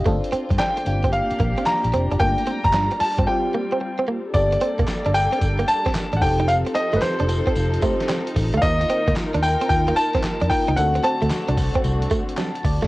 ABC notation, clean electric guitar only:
X:1
M:4/4
L:1/16
Q:"Swing 16ths" 1/4=112
K:Gm
V:1 name="Clean electric guitar"
A, z C z D z2 C z2 B, C z2 C D | B, z C z D z2 C z2 B, C z C B, z | z2 C B, z D z C z B, z C z D z E | z2 C A, z D z C z2 A, z G, z2 A, |
z2 C B, z D z C z B, z C z D z E | z2 C A, z D z C z2 A, z ^F, z2 A, |]